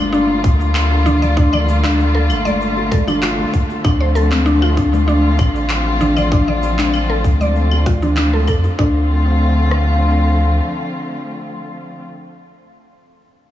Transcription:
Already playing: G1 D3 G3 A3 A#3 D4 F4
0.13 D4, shaker
0.44 D2, kick, shaker
0.61 shaker
0.75 clap, claves, shaker
0.91 high bongo
1.06 D4, low conga, shaker
1.22 D5, low conga, shaker
1.37 D4, kick, shaker
1.53 D5, low conga, claves
1.67 high bongo, shaker
1.84 D4, clap, high conga, shaker
2.00 shaker
2.15 A4
2.30 G1, claves, shaker
2.45 D5, high conga, shaker
2.61 shaker
2.77 high bongo
2.91 A4, kick, high conga, shaker
3.07 D4, high bongo, low conga, claves, shaker
3.22 F4, clap, shaker
3.39 high bongo, high conga
3.54 kick, shaker
3.70 high bongo, shaker
3.84 D2 F3 C4 D4 F4, kick, claves, shaker
4.00 C5
4.15 A4, high bongo, shaker
4.32 C4, clap, high conga, shaker
4.46 D4, shaker
4.62 F4, claves
4.77 D4, kick, shaker
4.94 high conga, shaker
5.08 D4, shaker
5.39 A1, kick, claves, shaker
5.55 shaker
5.69 clap, shaker
5.87 high bongo
6.00 D4, low conga, shaker
6.17 D5, low conga, claves, shaker
6.32 D4, kick, shaker
6.48 D5, low conga
6.63 high bongo, shaker
6.78 D4, clap, high conga, shaker
6.94 claves, shaker
7.10 A4
7.24 D2, kick, shaker
7.41 D5, high conga, shaker
7.56 shaker
7.71 high bongo, claves
7.86 F4, kick, high conga, shaker
8.02 D4, high bongo, low conga, shaker
8.17 D4, clap, shaker
8.33 A4, high bongo, high conga
8.47 F2 A4, kick, claves, shaker
8.64 high bongo, shaker
8.79 D2 D3 F3 A3 C4 D4 F4, kick
9.71 cross-stick

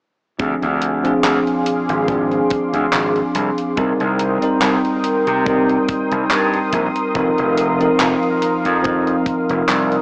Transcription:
0.38 D2 F3 C4 D4 G#4 F5 C6 D6, kick, closed hi-hat
0.62 D2, closed hi-hat
0.82 closed hi-hat
1.03 F3 C4 D4 G#4, closed hi-hat
1.24 D2, clap, closed hi-hat
1.47 closed hi-hat
1.66 closed hi-hat
1.89 G#1, closed hi-hat
2.07 F3 C4 D4 G#4, kick, closed hi-hat
2.32 closed hi-hat
2.50 kick, closed hi-hat
2.73 D2, closed hi-hat
2.93 G#1, clap, closed hi-hat
3.16 closed hi-hat
3.35 C2, closed hi-hat
3.58 closed hi-hat
3.76 C2 G3 C4 D#4 A#4 G5 C6 D#6, kick, closed hi-hat
4.00 C2, closed hi-hat
4.19 closed hi-hat
4.41 G3 C4 D#4 A#4, muted slap bass stroke, closed hi-hat
4.62 C2, clap, closed hi-hat
4.85 closed hi-hat
5.04 closed hi-hat
5.27 C3, closed hi-hat
5.45 G3 C4 D#4 A#4, kick, closed hi-hat
5.69 closed hi-hat
5.88 kick, closed hi-hat
6.12 C2, closed hi-hat
6.31 G2, clap, closed hi-hat
6.54 closed hi-hat
6.73 A#1, kick, closed hi-hat
6.96 closed hi-hat
7.15 F1 F3 C4 D#4 A#4 F5, kick, closed hi-hat
7.38 F1, closed hi-hat
7.58 closed hi-hat
7.79 F3 C4 D#4 A#4, closed hi-hat
8.00 F1, clap, closed hi-hat
8.23 closed hi-hat
8.42 closed hi-hat
8.65 F2, closed hi-hat
8.82 F3 C4 D#4 A#4, kick, closed hi-hat
9.07 closed hi-hat
9.26 kick, closed hi-hat
9.50 F1, closed hi-hat
9.69 C2, clap, closed hi-hat
9.92 closed hi-hat

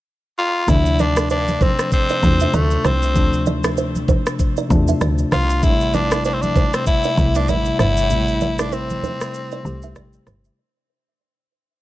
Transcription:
0.38 F4
0.67 D2 C3 F3 A3 D4 E4, kick, low conga, shaker
0.86 shaker
0.99 D4 D5, high conga, shaker
1.17 A4, cross-stick, shaker
1.30 D4 C5, shaker
1.48 high conga, shaker
1.61 C4 C5, kick, high conga, low conga, shaker
1.79 cross-stick, shaker
1.92 C4, kick, shaker
2.09 D5, shaker
2.21 E2 C3 A3 D4 F4, kick, high conga, shaker
2.40 E5, shaker
2.54 D2 A3 D5, high conga, low conga, shaker
2.71 shaker
2.84 C2 C4 C5, cross-stick, high conga, low conga, shaker
3.02 shaker
3.14 D2 C3 F3 A3 D4, kick, low conga, shaker
3.33 shaker
3.46 D5, high conga, shaker
3.64 A4, cross-stick, shaker
3.77 C5, shaker
3.95 high conga, shaker
4.08 C5, kick, high conga, low conga, shaker
4.26 cross-stick, shaker
4.39 kick, shaker
4.57 D5, shaker
4.69 E2 C3 A3 D4 F4, kick, high conga, shaker
4.88 E5, shaker
5.01 D2 D5, cross-stick, high conga, low conga, shaker
5.18 shaker
5.32 C2 F4 C5, cross-stick, high conga, low conga, shaker
5.50 shaker
5.62 A1 C3 G3 A3 D4 E4, kick, low conga, shaker
5.71 E4
5.81 shaker
5.94 D4 D5, high conga, shaker
6.11 A4, cross-stick, shaker
6.25 D4 C5, shaker
6.34 C4
6.42 D4, high conga, shaker
6.55 C5, kick, high conga, low conga, shaker
6.74 C4, cross-stick, shaker
6.86 E4, kick, shaker
7.04 D5, shaker
7.16 C2 C3 G3 A3 E4, kick, high conga, shaker
7.35 D4 E5, shaker
7.48 A1 E4 D5, high conga, low conga, shaker
7.65 shaker
7.79 G1 E4 C5, cross-stick, high conga, low conga, shaker
7.97 shaker
8.09 A1 C3 G3 A3 E4, low conga, shaker
8.28 shaker
8.41 D5, high conga, shaker
8.59 D4 A4, cross-stick, shaker
8.72 C4 C5, shaker
8.90 high conga, shaker
9.03 C5, high conga, low conga, shaker
9.21 cross-stick, shaker
9.34 shaker
9.51 D5, shaker
9.63 C2 C3 G3 A3 G4, high conga, shaker
9.82 E5, shaker
9.96 A1 D5, cross-stick, high conga, low conga, shaker
10.13 shaker
10.27 G1 C5, cross-stick, high conga, low conga, shaker
10.45 shaker

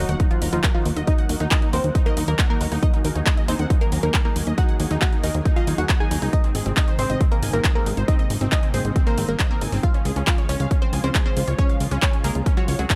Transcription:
Already playing: F#4, impact
0.00 F#3
0.09 D#2 F#5, closed hi-hat
0.20 D#4, kick, closed hi-hat
0.31 F3 F4, closed hi-hat
0.42 D#2 A#5, open hi-hat
0.53 D#2 F3 D#4 F4, closed hi-hat
0.64 A#4, kick, clap, closed hi-hat
0.74 F3 D#4 F4
0.85 D#2, open hi-hat
0.96 D#2 D#5, closed hi-hat
1.07 D#4 D#5, kick, closed hi-hat
1.18 F#5, closed hi-hat
1.29 D#2, open hi-hat
1.40 D#2 D#4, closed hi-hat
1.51 D#4 D#5 A#5, kick, clap, closed hi-hat
1.62 D#4, closed hi-hat
1.73 D#2 C4 A#4 C5, open hi-hat
1.84 D#2, closed hi-hat
1.95 D#4, kick, closed hi-hat
2.06 A#3 A#4 D#5, closed hi-hat
2.17 D#2 D#4, open hi-hat
2.28 D#2 A#3 A#4, closed hi-hat
2.39 F#5, kick, clap, closed hi-hat
2.50 A#3 D#4 A#4
2.61 D#2 A#5, open hi-hat
2.72 D#2 D#4, open hi-hat
2.83 D#4 D#5, kick, closed hi-hat
2.94 D#4, closed hi-hat
3.04 D#2 A#4, open hi-hat
3.15 D#2 D#4, closed hi-hat
3.26 D#4 D#5, kick, clap, closed hi-hat
3.37 D#5, closed hi-hat
3.48 D#2 C4 D#4 C5, open hi-hat
3.59 D#2 F#5, closed hi-hat
3.70 D#4, kick, closed hi-hat
3.81 A#3 A#4, closed hi-hat
3.92 D#2 A#5, open hi-hat
4.03 D#2 A#3 D#4 A#4, closed hi-hat
4.14 A#4, kick, clap, closed hi-hat
4.25 A#3 D#4 A#4
4.36 D#2, open hi-hat
4.47 D#2 D#5, closed hi-hat
4.58 D#4 F#4 F#5, kick, closed hi-hat
4.69 F#5, closed hi-hat
4.80 D#2, open hi-hat
4.91 D#2 D#4, closed hi-hat
5.02 F#4 F#5, kick, clap, closed hi-hat
5.13 D#4, closed hi-hat
5.23 D#2 D#4 A#4 D#5, open hi-hat
5.34 D#2, closed hi-hat
5.45 D#4, kick, closed hi-hat
5.56 F4 D#5 F5, closed hi-hat
5.67 D#2 D#4, open hi-hat
5.78 D#2 F#4 F#5, closed hi-hat
5.89 F#5, kick, clap, closed hi-hat
6.00 D#4 G#4 G#5
6.11 D#2 A#5, open hi-hat
6.22 C#2 D#4, open hi-hat
6.33 D#4 D#5, kick, closed hi-hat
6.44 C4, closed hi-hat
6.55 G#1 G#4, open hi-hat
6.66 G#1 C4, closed hi-hat
6.77 D#4 D#5, kick, clap, closed hi-hat
6.88 C5, closed hi-hat
6.99 G#1 C4 C5, open hi-hat
7.10 G#1 D#5, closed hi-hat
7.21 C4, kick, closed hi-hat
7.32 A#3 A#4, closed hi-hat
7.42 G#1 G#5, open hi-hat
7.53 G#1 A#3 C4 A#4, closed hi-hat
7.64 G#4, kick, clap, closed hi-hat
7.75 A#3 C4 A#4
7.86 G#1, open hi-hat
7.97 G#1 C5, closed hi-hat
8.08 C4 D#4 D#5, kick, closed hi-hat
8.19 D#5, closed hi-hat
8.30 G#1, open hi-hat
8.41 G#1 C4, closed hi-hat
8.52 D#4 D#5 G#5, kick, clap, closed hi-hat
8.63 C4, closed hi-hat
8.74 G#1 C4 G#4 C5, open hi-hat
8.85 G#1, closed hi-hat
8.96 C4, kick, closed hi-hat
9.07 A#3 A#4 C5, closed hi-hat
9.18 G#1 C4, open hi-hat
9.29 G#1 A#3 A#4, closed hi-hat
9.39 D#5, kick, clap, closed hi-hat
9.50 A#3 C4 A#4
9.61 G#1 G#5, open hi-hat
9.72 G#1 C4, open hi-hat
9.83 F4 F5, kick, closed hi-hat
9.94 C#4, closed hi-hat
10.05 C#2 G#4, open hi-hat
10.16 C#2 C#4, closed hi-hat
10.27 F4 F5, kick, clap, closed hi-hat
10.38 C#5, closed hi-hat
10.49 C#2 C#4 C#5, open hi-hat
10.60 C#2 F5, closed hi-hat
10.71 C#4, kick, closed hi-hat
10.82 C4 C5, closed hi-hat
10.93 C#2 G#5, open hi-hat
11.04 C#2 C4 C#4 C5, closed hi-hat
11.15 G#4, kick, clap, closed hi-hat
11.26 C4 C#4 C5
11.37 C#2, open hi-hat
11.48 C#2 C#5, closed hi-hat
11.58 C#4 C#5, kick, closed hi-hat
11.69 F5, closed hi-hat
11.80 C#2, open hi-hat
11.91 C#2 C#4, closed hi-hat
12.02 C#4 C#5 G#5, kick, clap, closed hi-hat
12.13 C#4, closed hi-hat
12.24 C#2 A#3 G#4 A#4, open hi-hat
12.35 C#2, closed hi-hat
12.46 C#4, kick, closed hi-hat
12.57 F#3 F#4 C#5, closed hi-hat
12.68 C#2 C#5, open hi-hat
12.79 C#2 F#3 F#4 G#4, closed hi-hat
12.90 G#4, kick, clap, closed hi-hat

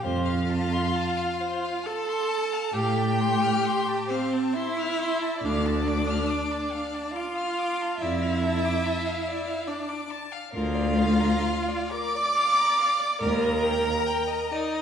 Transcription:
0.01 F2 F4 C5 F5
0.25 F5
0.50 A5
0.73 C6
0.95 A5
1.17 F5
1.40 C5
1.64 F5
1.83 A4 A5
2.08 C6
2.30 A5
2.52 F5
2.74 A2 G4 F5 G5
2.98 A5
3.20 C6
3.42 F6
3.65 C6
3.89 A5
4.09 C4 C5 F5
4.33 A5
4.53 E4 E5 C6
4.79 F6
5.00 C6
5.22 A5
5.39 D2 D5
5.44 D4 F5
5.65 A5
5.87 D6
6.09 F6
6.30 D6
6.51 A5
6.72 F5
6.95 A5
7.11 F4 F5
7.16 D6
7.38 F6
7.59 D6
7.81 A5
7.98 F2 E4 E5
8.02 D5
8.22 F5
8.43 A5
8.65 D6
8.86 A5
9.05 F5
9.28 D5
9.47 F5
9.67 D4 D5 A5
9.89 D6
10.10 A5
10.32 F5
10.52 D2 F4 A#4 F5
10.75 D5
10.98 F5
11.20 A#5
11.43 F5
11.68 D5
11.90 A#4 D5 D6
12.14 D5
12.36 F5
12.57 A#5
12.78 F5
12.99 D5
13.20 D#2 A#4 D5 A#5
13.41 D#5
13.63 G5
13.84 A#5
14.06 G5
14.27 D#5
14.52 D#4 D5 D#5
14.75 D#5

